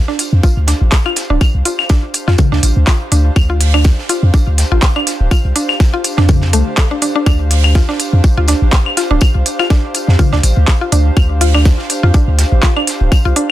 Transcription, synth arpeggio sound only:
0.08 0.13 D4 medium
0.43 0.47 F4 medium
0.68 0.74 D4 medium
1.06 1.09 F4 medium
1.30 1.35 D4 medium
1.65 1.69 F4 medium
1.90 1.96 D4 medium
2.28 2.31 F4 medium
2.52 2.57 D4 medium
2.87 2.91 F4 medium
3.12 3.18 D4 medium
3.50 3.53 F4 medium
3.74 3.79 D4 medium
4.09 4.13 F4 medium
4.34 4.40 D4 medium
4.72 4.75 F4 medium
4.96 5.01 D4 medium
5.31 5.35 F4 medium
5.56 5.62 D4 medium
5.94 5.97 F4 medium
6.18 6.23 D4 medium
6.53 6.57 A3 medium
6.78 6.82 A4 medium
6.91 6.94 D4 medium
7.02 7.06 D4 medium
7.16 7.18 D4 medium
7.26 7.32 D4 medium
7.75 7.79 F4 medium
7.89 7.94 D4 medium
8.37 8.41 F4 medium
8.48 8.54 D4 medium
8.97 9.01 F4 medium
9.11 9.16 D4 medium
9.59 9.63 F4 medium
9.70 9.76 D4 medium
10.19 10.23 F4 medium
10.33 10.37 D4 medium
10.81 10.85 F4 medium
10.92 10.98 D4 medium
11.41 11.45 F4 medium
11.54 11.59 D4 medium
12.03 12.07 F4 medium
12.14 12.20 D4 medium
12.63 12.67 F4 medium
12.77 12.81 D4 medium
13.25 13.29 F4 medium
13.36 13.42 D4 medium

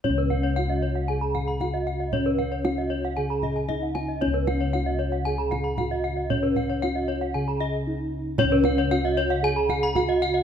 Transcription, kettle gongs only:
0.05 1.57 C#4 medium
0.10 3.16 C#2 loud
0.57 0.65 D#4 soft
1.61 1.69 D#4 soft
2.13 3.66 C#4 medium
2.65 2.73 D#4 soft
3.18 4.70 C#3 soft
3.70 3.78 D#4 soft
4.22 5.74 C#4 medium
4.27 7.33 C#2 medium
4.74 4.82 D#4 soft
5.79 5.87 D#4 soft
6.30 7.83 C#4 medium
6.83 6.91 D#4 soft
7.35 8.87 C#3 medium
7.87 7.95 D#4 soft
8.39 9.91 C#4 medium
8.44 10.43 C#2 medium
8.91 8.99 D#4 soft
9.96 10.04 D#4 soft

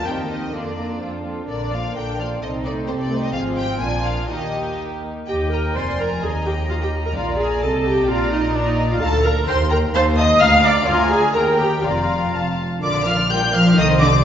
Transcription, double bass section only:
0.07 0.48 D#2 medium
0.54 0.96 F2 soft
1.02 1.44 F2 soft
1.49 1.91 A#1 soft
1.97 2.38 A#1 soft
2.43 2.83 C2 medium
2.89 3.30 C2 medium
3.35 3.79 G#1 medium
3.82 4.31 A#1 medium
4.31 5.07 D#2 medium
5.29 5.73 D#2 medium
5.77 6.24 F1 medium
6.23 7.17 D#2 medium
7.16 7.63 A#1 medium
7.63 8.10 C2 medium
8.09 9.00 A#1 medium
9.01 9.42 D2 medium
9.49 9.89 D#2 medium
9.94 10.35 D#2 medium
10.41 10.82 D2 medium
10.87 11.32 D2 medium
11.35 11.84 D#2 medium
11.83 12.31 F1 medium
12.32 12.61 F1 medium
12.81 13.73 A#1 medium
13.77 14.24 C2 medium

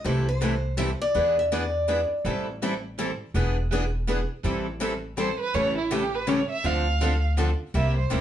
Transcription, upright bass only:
0.05 0.93 C2 medium
1.15 2.03 E2 medium
2.25 3.13 A1 medium
3.34 4.22 E1 medium
4.44 5.32 A1 medium
5.54 6.42 A1 medium
6.64 7.52 D2 medium
7.74 8.04 C2 medium
8.11 8.21 D2 medium

